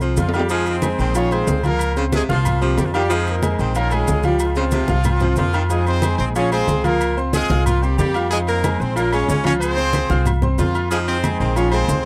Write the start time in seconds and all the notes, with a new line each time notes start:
Already playing: C2
0.00 F3 C4 C5 C6, high conga, maracas
0.17 F2 F3 F4, high conga, low timbale, low agogo, maracas
0.29 low timbale
0.33 D#3 G3 F4 G4 F5 F6, high conga, low agogo, maracas
0.40 low timbale
0.49 F3 G#3 C4 D#4 F4 G#4 F5, high conga, low agogo, maracas
0.66 C4 D#4 G#4 C5, high conga, low agogo, maracas
0.82 G#3 G#4 G#5, high conga, low timbale, low agogo, maracas
0.98 A#1 D#3 C4 C5, high conga, maracas
1.15 F3 C#4 F4 G#4 C#5 F5, high conga, low agogo, maracas
1.31 G#3 C4 F4 G#4 C5 G#5, high conga, low agogo, maracas
1.47 C#2, high conga, low timbale, maracas
1.63 F3 A#3 F4 A#4 F5, high conga, low agogo, maracas
1.79 high conga, low agogo, maracas
1.96 C#3 C4 C5 C6, high conga, maracas
2.12 C3 G#3 G#4, high conga, low timbale, low agogo, maracas
2.29 C2 F3 A#3 F4 F5 F6, high conga, maracas
2.45 high conga, low conga, low agogo, maracas
2.61 F3 G3 C4 G4 C5 C6, high conga, maracas
2.78 F2 G3 G4, high conga, low timbale, low agogo, maracas
2.84 F3 F4
2.93 D#3 G3 F4 G4 F5 F6, high conga, low agogo, maracas
3.10 F3 G#3 C4 D#4 F4 G#4 F5, high conga, low agogo, maracas
3.26 A#3 D#4 A#4, high conga, low agogo, maracas
3.42 G#3 G#4 G#5, high conga, low timbale, low agogo, maracas
3.59 A#1 D#3 C4 C5, high conga, maracas
3.75 F3 A#3 C#4 F4 A#4 F5, high conga, low agogo, maracas
3.91 G#3 C#4 F4 G#4 G#5, high conga, low agogo, maracas
4.07 C#2, high conga, low timbale, maracas
4.23 F3 G3 F4 G4 F5, high conga, low agogo, maracas
4.39 F3 G#3 C4 F4, low agogo, maracas
4.55 C#3 C4 C5 C6, high conga, maracas
4.71 C3, high conga, low timbale, low agogo, maracas
4.88 C2 F4 F5 F6, high conga, maracas
5.04 high conga, low conga, low agogo, maracas
5.20 F3 C4 C5 C6, high conga, low conga, maracas
5.36 F2 F3 A#3 F4, high conga, low timbale, low agogo, maracas
5.53 D#3 F4 F5 F6, high conga, low agogo, maracas
5.69 F3 G#3 C4 D#4 F4 G#4 F5, high conga, low agogo, maracas
5.85 C4 D#4 G#4 C5, high conga, low agogo, maracas
6.02 G#3 G#4 G#5, high conga, low timbale, low agogo, maracas
6.18 A#1 C4 C5, maracas
6.35 F3 C#4 F4 G#4 C#5 F5, high conga, low agogo, maracas
6.51 G#3 C4 F4 G#4 C5 G#5, high conga, low agogo, maracas
6.67 C#2, high conga, low timbale, maracas
6.83 F3 A#3 F4 A#4 F5, high conga, low agogo, maracas
7.01 high conga, low agogo, maracas
7.17 C4 C5 C6, high conga, maracas
7.33 G#3 C4 F4 G#4, high conga, low timbale, low agogo, maracas
7.50 C2 F4 F5 F6, high conga, maracas
7.65 F3 A#3 F4, high conga, low conga, low agogo, maracas
7.81 G3 C4 G4 C5 C6, maracas
7.97 F2 G3 A#3 G4, high conga, low timbale, low agogo, maracas
8.14 F4 F5 F6, high conga, low agogo, maracas
8.30 F3 G#3 C4 D#4 F4 G#4 F5, high conga, low agogo, maracas
8.46 A#3 D#4 A#4, high conga, low agogo, maracas
8.64 G#3 G#4 G#5, high conga, low timbale, low agogo, maracas
8.80 A#1 C4 C5, high conga, maracas
8.96 F3 A#3 C#4 F4 A#4 F5, high conga, low agogo, maracas
9.12 G#3 C#4 G#4 C#5 G#5, high conga, low agogo, maracas
9.27 C#2 C#4 C#5, high conga, low timbale, maracas
9.44 F3 C#4 F4 C#5 F5, high conga, low agogo, maracas
9.60 C4 F4 G#4 C5, high conga, low agogo, maracas
9.77 C4 C5 C6, high conga, maracas
9.93 high conga, low timbale, low agogo, maracas
10.10 C2 F4 F5 F6, high conga, maracas
10.26 high conga, low conga, low agogo, maracas
10.42 C4 C5 C6, high conga, low conga, maracas
10.57 F2 F3 A#3 F4, high conga, low timbale, low agogo, maracas
10.75 F4 F5 F6, high conga, low agogo, maracas
10.90 F3 G#3 C4 D#4 F4 G#4 F5, high conga, low agogo, maracas
11.06 C4 D#4 G#4 C5, high conga, low agogo, maracas
11.24 G#3 G#4 G#5, high conga, low timbale, low agogo, maracas
11.38 A#1 D#3 C4 C5, high conga, maracas
11.55 F3 C#4 F4 G#4 C#5 F5, high conga, low agogo, maracas
11.71 G#3 C4 F4 G#4 C5 G#5, high conga, low agogo, maracas
11.88 C#2, high conga, low timbale, maracas